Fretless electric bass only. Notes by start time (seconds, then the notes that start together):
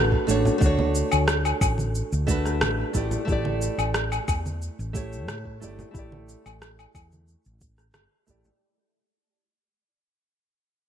Already playing: A1
0.28 A1
0.61 D2
1.13 D2
1.61 A1
2.13 D2
2.62 A1
2.95 A1
3.28 A1
3.78 A1
4.28 E2
4.79 A1
5.28 A2
5.62 G1
5.94 A1
6.46 A1
6.95 E2
7.46 A1
7.95 G1
8.28 A1